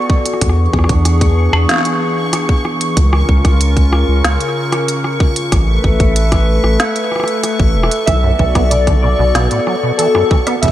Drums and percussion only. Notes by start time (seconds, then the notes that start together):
0.10 kick
0.26 cross-stick, closed hi-hat
0.33 cross-stick
0.41 kick, cross-stick, closed hi-hat
0.49 cross-stick
0.73 kick, cross-stick
0.79 cross-stick
0.84 cross-stick
0.89 kick, closed hi-hat
1.05 cross-stick, closed hi-hat
1.21 kick, closed hi-hat
1.53 cross-stick
1.69 snare, closed hi-hat
1.71 snare
1.74 snare
1.76 cross-stick, snare
1.78 snare
1.81 snare
1.83 snare, closed hi-hat
2.33 cross-stick, closed hi-hat
2.49 kick
2.65 cross-stick
2.81 closed hi-hat
2.97 kick, closed hi-hat
3.13 cross-stick
3.29 kick
3.45 kick, cross-stick, closed hi-hat
3.61 closed hi-hat
3.77 kick, closed hi-hat
3.93 cross-stick
4.24 cross-stick, snare, closed hi-hat
4.40 closed hi-hat
4.72 cross-stick, closed hi-hat
4.88 closed hi-hat
5.04 cross-stick
5.20 kick
5.36 closed hi-hat
5.52 kick, cross-stick, closed hi-hat
5.84 kick
6.00 kick, closed hi-hat
6.16 closed hi-hat
6.32 kick, cross-stick, closed hi-hat
6.64 cross-stick
6.80 snare, closed hi-hat
6.96 closed hi-hat
7.12 cross-stick
7.16 cross-stick
7.20 cross-stick
7.24 cross-stick, closed hi-hat
7.43 cross-stick, closed hi-hat
7.60 kick
7.83 cross-stick
7.91 closed hi-hat
8.07 kick, cross-stick, closed hi-hat
8.39 kick
8.55 kick, cross-stick, closed hi-hat
8.71 closed hi-hat
8.87 kick, cross-stick, closed hi-hat
9.35 cross-stick, snare, closed hi-hat
9.51 closed hi-hat
9.67 cross-stick
9.99 closed hi-hat
10.15 cross-stick
10.31 kick
10.47 cross-stick, closed hi-hat
10.63 kick, closed hi-hat
10.65 kick
10.68 kick